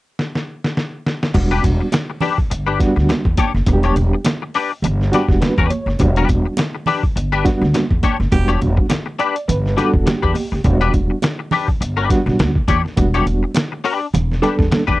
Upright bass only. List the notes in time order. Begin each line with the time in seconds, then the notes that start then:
1.34 E1
1.64 E1
2.51 G1
2.96 D2
3.25 E2
3.54 F#1
3.67 E1
3.96 E1
4.82 G1
5.28 E1
5.58 E2
5.86 F#1
6.00 E1
6.29 E1
7.16 G1
7.62 D2
7.91 E2
8.20 F#1
8.32 E1
8.62 E1
9.48 G1
9.94 E1
10.23 E2
10.52 F#1
10.64 E1
10.94 E1
11.81 G1
12.26 B1
12.39 D2
12.68 E2
12.97 E1
13.26 E1
14.14 E1
14.59 E2
14.88 E2